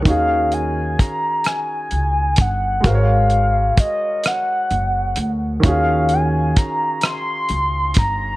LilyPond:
<<
  \new Staff \with { instrumentName = "Soft synth lead" } { \time 6/8 \key ees \dorian \tempo 4. = 43 f''8 aes''8 bes''8 aes''4 ges''8 | f''4 ees''8 ges''4 r8 | f''8 aes''8 bes''8 c'''4 bes''8 | }
  \new Staff \with { instrumentName = "Grand piano" } { \time 6/8 \key ees \dorian <ees des' ees' ges' aes'>2. | <aes ges' bes' c'' des''>2. | <ees des' f' ges' aes'>2. | }
  \new Staff \with { instrumentName = "Upright bass" } { \clef bass \time 6/8 \key ees \dorian ees,4 r4 des,8 g,,8 | aes,,4 r4 ges,,8 d,8 | ees,4 r4 des,8 g,,8 | }
  \new DrumStaff \with { instrumentName = "Drums" } \drummode { \time 6/8 <hh bd>8 hh8 <hh bd>8 <hh ss>8 hh8 <hh bd>8 | <hh bd>8 hh8 <hh bd>8 <hh ss>8 hh8 hh8 | <hh bd>8 hh8 <hh bd>8 <hh ss>8 hh8 <hh bd>8 | }
>>